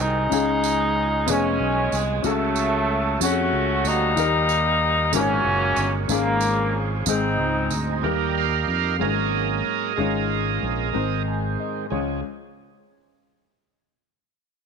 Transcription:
Already playing: G#2 D#3 G#3 C4 D#4 F#4 G#4
0.00 C2 G#3 D#4, tambourine
0.30 C#2 C#3 G#3 C#4 D#4 F4 G#4, tambourine
0.38 F4
0.64 tambourine
1.26 F1 F3 G#3 B3 C#4 F4 G#4 C#5, tambourine
1.31 C#4
1.60 B1
1.92 C2, tambourine
2.22 C#2 C#3 F#3 C#4 F#4 A4, tambourine
2.26 A3
2.56 tambourine
3.20 F2 A3 C#4 F#4 G#4, tambourine
3.30 A4
3.53 C#2
3.85 D2 G3 A#3 D#4, tambourine
4.15 D#2 D#3 A#3 D#4 F4 G4 A#4, tambourine
4.24 G4
4.49 tambourine
5.12 G#1 A#2 D#3 F#3 G#3 A#3 C#4 D#4 F#4 A#4, tambourine
5.44 F#1
5.76 G1, tambourine
6.08 G#1 G#2 C#3 F3 G#3 A#3 C#4 E4 F4 G#4, tambourine
6.16 F4
6.41 tambourine
7.06 G#1 G#2 G#3 A#3 C4 D#4 G#4, tambourine
7.13 C4
7.38 C#2
7.71 D2, tambourine
8.02 D#2 D#3 G3 A#3 D#4 G4 A#4
8.38 A#4 F5
8.68 F2
8.99 G#1 G#2 F#3 G#3 A#3 C#4 F#4 G#4 A#4 D#5
9.96 G#1 G#2 G#3 C#4 F4
10.01 C#5
10.63 A#1
10.93 G#1 G#2 D#3 G#3 C4 D#4 C5
11.28 G#5
11.60 D#5
11.90 C#2 F3 G#3 C#4 F4 G#4 C#5

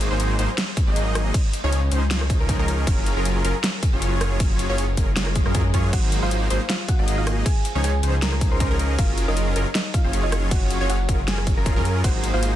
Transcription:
0.01 closed hi-hat
0.11 G#1 F#3 A#3 D#4 G#4 C5
0.20 closed hi-hat
0.39 G#1 F#3 A#3 D#4 G#4 C5, closed hi-hat
0.58 snare, closed hi-hat, crash
0.77 kick, closed hi-hat
0.87 G#1 F#3 A#3 D#4 G#4 D#5
0.96 closed hi-hat
1.15 cross-stick, closed hi-hat
1.34 kick, closed hi-hat, crash
1.53 closed hi-hat
1.64 C#2 F3 C#4 D#4 G#4 C#5
1.73 closed hi-hat
1.92 C#2 F3 C#4 D#4 G#4 C5, closed hi-hat
2.11 snare, closed hi-hat, crash
2.21 cross-stick
2.30 kick, closed hi-hat
2.40 C#2 F3 C#4 D#4 G#4 A#4
2.49 kick, closed hi-hat
2.59 C#2 F3 C#4 D#4 G#4 A#4
2.68 closed hi-hat
2.87 F#1 C#4 F4 G#4 A#4, kick, closed hi-hat, crash
3.06 closed hi-hat
3.17 F#1 F#3 C#4 F4 G#4 A#4
3.25 closed hi-hat
3.44 F#1 F#3 C#4 F4 G#4 A#4, closed hi-hat
3.64 snare, closed hi-hat, crash
3.83 kick, closed hi-hat
3.93 F#1 F#3 C#4 F4 G#4 C#5
4.02 closed hi-hat
4.21 cross-stick, closed hi-hat
4.40 kick, closed hi-hat, crash
4.59 closed hi-hat
4.69 F#1 F#3 C#4 F4 G#4 C#5
4.78 closed hi-hat
4.97 F#1 F#3 C#4 F4 G#4 A#4, kick, closed hi-hat
5.17 snare, closed hi-hat, crash, swell
5.27 cross-stick
5.36 kick, closed hi-hat
5.46 F#2 F#3 C#4 F4 G#4 A#4, cross-stick
5.55 kick, closed hi-hat
5.74 F#2 F#3 C#4 F4 G#4 C#5, kick, closed hi-hat
5.93 G#1 F#4 C5 F#5, kick, closed hi-hat, crash
6.12 closed hi-hat
6.22 G#1 F#3 A#3 D#4 F4 G#4 C5 F5
6.31 closed hi-hat
6.50 G#1 F#3 A#3 D#4 G#4 C5, closed hi-hat
6.69 F4 F5, snare, closed hi-hat, crash
6.88 F#4 F#5, kick, closed hi-hat
6.99 G#1 F#3 A#3 D#4 G#4 D#5
7.08 closed hi-hat
7.18 F4 F5
7.27 cross-stick, closed hi-hat
7.46 G#4 G#5, kick, closed hi-hat, crash
7.65 closed hi-hat
7.75 C#2 F3 C#4 D#4 G#4 C#5
7.84 G#4 G#5, closed hi-hat
8.03 C#2 F3 C#4 D#4 G#4 C5, closed hi-hat
8.22 A#4 A#5, snare, closed hi-hat, crash
8.32 cross-stick
8.41 kick, closed hi-hat
8.51 C#2 F3 C#4 D#4 G#4 A#4 C5 C6
8.60 kick, closed hi-hat
8.71 C#2 F3 C#4 D#4 G#4 A#4
8.79 closed hi-hat
8.98 F#1 F#3 C#4 F4 G#4 A#4 F5, kick, closed hi-hat, crash
9.18 closed hi-hat
9.28 F#1 F#3 C#4 D#4 F4 G#4 A#4 D#5
9.37 closed hi-hat
9.56 F#1 F#3 C#4 F4 G#4 A#4, closed hi-hat
9.75 D#4 D#5, snare, closed hi-hat, crash
9.94 F4 F5, kick, closed hi-hat
10.04 F#1 F#3 C#4 F4 G#4 C#5
10.13 closed hi-hat
10.23 D#4 D#5
10.32 cross-stick, closed hi-hat
10.51 F#4 F#5, kick, closed hi-hat, crash
10.71 closed hi-hat
10.81 F#1 F#3 C#4 F4 G#4 C#5
10.90 F#4 F#5, closed hi-hat
11.09 F#1 F#3 C#4 F4 G#4 A#4, kick, closed hi-hat
11.28 G#4 G#5, snare, closed hi-hat, crash
11.38 cross-stick
11.47 kick, closed hi-hat
11.57 F#1 F#3 C#4 F4 G#4 A#4 A#5
11.66 kick, closed hi-hat
11.76 F#2 F#3 C#4 F4 G#4 A#4
11.85 closed hi-hat
12.04 G#1 F#3 A#3 D#4 F#4 G#4 C5 F#5, kick, closed hi-hat, crash
12.24 closed hi-hat
12.34 G#1 F#3 A#3 D#4 F4 G#4 C5 F5
12.43 closed hi-hat

